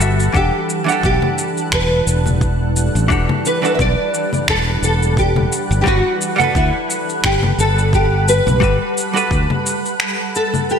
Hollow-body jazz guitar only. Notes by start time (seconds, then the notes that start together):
Already playing: G3
0.00 F#4 A4 E5
0.32 E3 D4 G4 A4 F#5
0.84 E3 D4 F#5
0.90 G4 A4
3.08 E3 D4 F#4 G4 A4
3.62 E3 D4 F#4 A4
5.84 G3 F#4 B4
6.36 G3 F#5
6.41 A4 B4
8.60 G3 F#4 A4 B4
9.13 G3 F#4 A4 B4